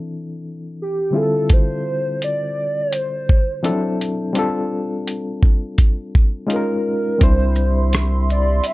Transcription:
Already playing: E3 C4 D4 E4 A4
0.82 G4
1.11 D3 G3 C4 E4
1.15 F4 G#4 A4
1.23 A4
1.50 C5, kick, closed hi-hat
2.22 D5, closed hi-hat
2.81 C5
2.93 closed hi-hat
3.29 kick
3.63 F3 C4 D4 E4 A4, closed hi-hat
3.69 F#3
4.01 closed hi-hat
4.33 G3 C4 D4, closed hi-hat
4.37 F4 A4
5.08 closed hi-hat
5.43 kick
5.78 kick, closed hi-hat
6.15 kick
6.47 G#3 C#4 D#4 F4 G#4, closed hi-hat
6.52 A#4
7.18 C2 G3 C4 D4 E4 G4 E5 B5 C6, kick, closed hi-hat
7.23 C5
7.55 shaker
7.93 cross-stick, closed hi-hat
8.30 D5, shaker
8.64 E5, closed hi-hat

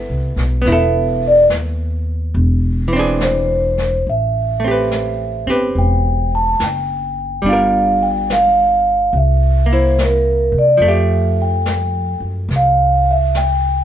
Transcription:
Already playing: B3 E4 A4
0.09 C2
0.36 B1, snare
0.62 E1 B3, brush sweep, snare
0.68 E4
0.72 A4 E5
1.27 D5
1.49 D#2, snare, hi-hat pedal
2.34 E1, brush sweep
2.88 E3
2.93 C4 D4
2.99 G#4
3.20 C5, snare, hi-hat pedal
3.78 snare
4.07 A1 E5, brush sweep
4.60 A3
4.64 C4 G4
4.71 B4
4.91 snare, hi-hat pedal
5.47 G1 C4 G4 B4, snare
5.75 E1 G5, brush sweep
6.35 A5
6.60 F#1 G5, snare, hi-hat pedal
7.42 G1 G3, brush sweep
7.46 D4 F4 F5
7.53 A#4
8.03 G5
8.30 F5, snare, hi-hat pedal
9.13 C2, brush sweep
9.17 E5
9.66 A#3
9.73 E4 C5
9.98 snare, hi-hat pedal
10.03 A#4
10.52 C3
10.59 D5
10.77 F2 F3
10.82 A3, brush sweep
10.87 G4 E5
11.42 G5
11.66 snare, hi-hat pedal
12.20 F#2
12.49 C2, brush sweep, snare
12.56 F5
13.11 E5
13.35 G5, snare, hi-hat pedal

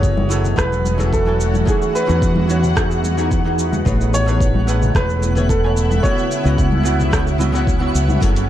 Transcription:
Already playing: F#1 E3 F#3 A3 C#4 E4 F#4 G#4 A4 C#5 F#5
0.03 kick, cabasa
0.17 high conga
0.29 F#3 E4 G#4 A4, cabasa
0.44 low conga, cabasa
0.56 E1 F#3 E4 G#4 A4 B4, kick, cross-stick, cabasa
0.73 cabasa
0.84 high conga, cabasa
0.98 F#3 E4 G#4 A4, low conga, cabasa
1.13 A4, kick, cabasa
1.25 F#3 E4 A4 G#5
1.41 cabasa
1.54 high conga, cabasa
1.65 E3 B3 D#4 F#4 G#4, kick, cabasa
1.82 cabasa
1.95 B4, cabasa
2.06 E2 E3 D#4 F#4 G#4, cabasa
2.22 kick, cabasa
2.36 high conga
2.48 E3 D#4 F#4 C#5, cabasa
2.64 low conga, cabasa
2.75 E3 D#4 F#4 G#4, kick, cross-stick, cabasa
2.91 cabasa
3.04 high conga, cabasa
3.17 E3 D#4 F#4 G#4, cabasa
3.31 kick, cabasa
3.45 E3 D#4 F#4 G#4
3.59 cabasa
3.73 high conga, low conga, cabasa
3.85 A1 C#3 A3 B3 E4 G#4 B4 C#5, kick, cabasa
4.01 cabasa
4.14 C#5, cabasa
4.26 A3 G#4 B4 C#5, cabasa
4.40 kick, cabasa
4.55 high conga
4.67 A3 G#4 B4 F#5, cabasa
4.82 low conga, cabasa
4.95 E1 A3 G#4 B4 C#5, kick, cross-stick, cabasa
5.10 cabasa
5.22 high conga, cabasa
5.35 A3 G#4 B4 C#5, low conga, cabasa
5.49 A4, kick, cabasa
5.64 A3 B4 C#5 G#5
5.77 cabasa
5.91 high conga, cabasa
6.03 C#3 F#3 B3 C#4 E4 F#4 C#5 D#5, kick, cabasa
6.18 cabasa
6.31 cabasa
6.44 C#2 C#3 B3 E4 F#4 D#5, cabasa
6.58 kick, cabasa
6.72 high conga
6.83 C#3 B3 E4 F#4 F#5, cabasa
7.00 low conga, cabasa
7.11 C#3 B3 E4 F#4 D#5, kick, cross-stick, cabasa
7.27 cabasa
7.38 C#3 B3 E4 F#4 D#5, high conga, cabasa
7.52 C#3 B3 E4 F#4 F#5, cabasa
7.67 kick, cabasa
7.80 C#3 B3 E4 F#4 E5
7.95 C#2, cabasa
8.08 high conga, low conga, cabasa
8.20 F#1 E3 F#3 A3 E4 F#4 G#4 A4, kick, open hi-hat, cabasa
8.36 open hi-hat, cabasa

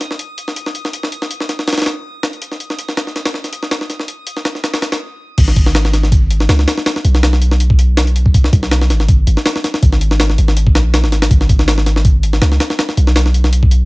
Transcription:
Already playing: D#6
0.01 snare, closed hi-hat
0.11 snare
0.19 closed hi-hat
0.38 closed hi-hat
0.48 snare
0.56 closed hi-hat
0.66 snare
0.75 closed hi-hat
0.85 snare
0.93 closed hi-hat
1.03 snare
1.12 closed hi-hat
1.22 snare
1.31 closed hi-hat
1.40 snare
1.49 snare, closed hi-hat
1.59 snare
1.68 snare, closed hi-hat
1.73 snare, closed hi-hat
1.78 snare, closed hi-hat
1.82 snare, closed hi-hat
1.86 snare, closed hi-hat
2.23 snare, closed hi-hat
2.33 closed hi-hat
2.42 closed hi-hat
2.52 snare
2.60 closed hi-hat
2.70 snare
2.79 closed hi-hat
2.89 snare
2.97 snare, closed hi-hat
3.07 snare
3.16 snare, closed hi-hat
3.25 snare, closed hi-hat
3.34 snare
3.44 snare, closed hi-hat
3.53 closed hi-hat
3.63 snare
3.71 snare, closed hi-hat
3.81 snare
3.90 snare, closed hi-hat
4.00 snare
4.08 closed hi-hat
4.27 closed hi-hat
4.37 snare
4.45 snare, closed hi-hat
4.55 snare
4.64 snare, closed hi-hat
4.74 snare, closed hi-hat
4.82 snare, closed hi-hat
4.92 snare, closed hi-hat
5.38 G#1, kick, closed hi-hat, crash
5.48 snare
5.56 kick, closed hi-hat
5.66 snare
5.75 snare, closed hi-hat
5.85 snare
5.93 snare, closed hi-hat
6.03 snare
6.12 kick, closed hi-hat
6.31 closed hi-hat
6.40 snare
6.49 C#2, snare, closed hi-hat
6.59 snare
6.68 snare, closed hi-hat
6.78 snare
6.86 snare, closed hi-hat
6.96 snare
7.05 B1, closed hi-hat
7.15 snare
7.23 snare, closed hi-hat
7.33 snare
7.42 closed hi-hat
7.51 snare
7.60 closed hi-hat
7.70 kick
7.79 closed hi-hat
7.97 snare, closed hi-hat
8.07 closed hi-hat
8.16 closed hi-hat
8.26 kick
8.34 kick, closed hi-hat
8.44 snare
8.53 B1, kick, closed hi-hat
8.63 snare
8.71 snare, closed hi-hat
8.81 snare
8.90 G#1, snare, closed hi-hat
9.00 snare
9.08 kick, closed hi-hat
9.27 G#1, closed hi-hat
9.37 snare
9.46 snare, closed hi-hat
9.56 snare
9.64 snare, closed hi-hat
9.74 snare
9.83 G#1, kick, closed hi-hat
9.92 snare
10.01 closed hi-hat
10.11 snare
10.20 snare, closed hi-hat
10.30 snare
10.38 G#1, closed hi-hat
10.48 snare
10.57 closed hi-hat
10.67 kick
10.75 A#1, snare, closed hi-hat
10.94 snare, closed hi-hat
11.04 G#1, snare
11.12 snare, closed hi-hat
11.22 snare, closed hi-hat
11.31 G#1, kick, closed hi-hat
11.41 snare
11.49 kick, closed hi-hat
11.59 snare
11.68 snare, closed hi-hat
11.78 snare
11.86 snare, closed hi-hat
11.96 snare
12.05 kick, closed hi-hat
12.23 closed hi-hat
12.33 snare
12.42 C#2, snare, closed hi-hat
12.52 snare
12.60 snare, closed hi-hat
12.70 snare
12.79 snare, closed hi-hat
12.89 snare
12.97 B1, closed hi-hat
13.07 snare
13.16 snare, closed hi-hat
13.26 snare
13.34 closed hi-hat
13.44 snare
13.53 closed hi-hat
13.63 kick
13.71 closed hi-hat

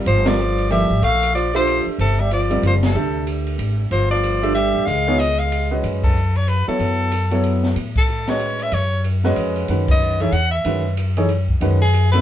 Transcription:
0.06 G1 F3 C5, ride
0.25 F3 G3 C4 F4 A#4 D5, snare, ride
0.39 hi-hat pedal
0.58 ride
0.70 F3 G3 A#3 E4 A4 C5 E5, ride
0.90 G#1
1.02 A#1 A3 F5, ride
1.23 ride
1.34 F3 D5, hi-hat pedal
1.54 F3 A3 D4 G4 C5 E5, ride
1.67 ride
1.87 muted upright bass stroke
1.98 G1 C3 A4, ride
2.20 G3 E5
2.31 F3 D5, hi-hat pedal, ride
2.50 G3 C4 F4 A#4 D5, ride
2.63 F#1 F3, ride
2.67 C5
2.83 C3 A4, snare, ride
2.95 D2 A3 D4 G4 C5 E5
3.27 hi-hat pedal, ride
3.47 ride
3.58 G#1, ride
3.91 G1 F3 C5, ride
4.11 F3 D5
4.23 hi-hat pedal, ride
4.43 A3 D4 G4 C5 E5, ride
4.55 G3 E5, ride
4.75 A#1
4.86 C#2 G#3 F5, ride
5.07 B3 D#4 F4 G#4 C#5
5.18 G#3 D#5, hi-hat pedal, ride
5.39 G#3 F5, ride
5.52 ride
5.71 G#3 C#4 F#4 B4 D#5
5.83 F#2, ride
6.03 A4, kick, crash
6.16 hi-hat pedal
6.36 C#5, ride
6.48 B4, ride
6.67 F#3 B3 E4 A4 C#5, muted upright bass stroke
6.80 F#2, ride
7.12 hi-hat pedal, ride
7.31 F#3 B3 E4 A4 C#5, ride
7.44 ride
7.64 snare
7.76 A2, ride
7.96 A4, kick, crash
8.08 hi-hat pedal
8.27 G#3 C#4 F#4 B4 C#5 D#5, snare, ride
8.39 ride
8.59 E5, ride
8.72 F#2 C#5, ride
9.04 ride
9.24 G#3 C#4 F#4 B4 D#5, snare
9.36 F2, hi-hat pedal, ride
9.56 ride
9.68 F#2 D#3 G#3 C#4 F#4 B4, ride
9.88 D#5, kick, crash
10.00 hi-hat pedal
10.20 E3 A3 D#4 G#4 C#5 E5, ride
10.32 E2 F#5, ride
10.51 E5
10.65 F#2 D#3 G#3 C#4 F#4 B4, ride
10.97 hi-hat pedal, ride
11.17 E3 A3 D#4 G#4 C#5, ride
11.29 ride
11.49 kick
11.61 F#2 D#3 G#3 C#4 F#4 B4, ride
11.82 G#4
11.93 hi-hat pedal, ride
12.12 C#3 F#3 B3 E4 A4 B4, ride

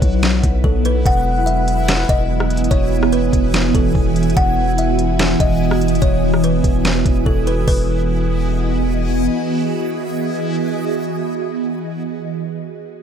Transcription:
Already playing: F#3 B3 E4 B4 F#5
0.02 B1, kick, closed hi-hat
0.23 snare, closed hi-hat
0.43 B1, kick, closed hi-hat
0.64 B1 A4, kick
0.85 B4, closed hi-hat
1.06 E1 E3 E4 F#4 F#5 G#5 D#6, kick, closed hi-hat
1.46 E5, closed hi-hat
1.68 closed hi-hat
1.88 snare, closed hi-hat
2.09 E1 D#5, kick, closed hi-hat
2.40 cross-stick
2.50 closed hi-hat
2.57 closed hi-hat
2.64 closed hi-hat
2.71 E1 C#5, kick, closed hi-hat
3.03 cross-stick
3.12 B4, closed hi-hat
3.33 E1, kick, closed hi-hat
3.54 snare, closed hi-hat
3.75 E1 A4, kick, closed hi-hat
3.95 E1, kick
4.16 closed hi-hat
4.23 closed hi-hat
4.30 closed hi-hat
4.37 E1 F#5, kick, closed hi-hat
4.78 E5, closed hi-hat
4.99 closed hi-hat
5.19 snare, closed hi-hat
5.40 E1 D#5, kick, closed hi-hat
5.71 cross-stick
5.81 closed hi-hat
5.88 closed hi-hat
5.95 closed hi-hat
6.02 E1 C#5, kick, closed hi-hat
6.34 cross-stick
6.44 B4, closed hi-hat
6.64 E1, kick, closed hi-hat
6.85 snare, closed hi-hat
7.06 E1, kick, closed hi-hat
7.26 E1 A4, kick
7.47 B4, closed hi-hat
7.68 E1 E3 B3 E4 F#4 G#4 B4 D#5 G#5, kick, open hi-hat

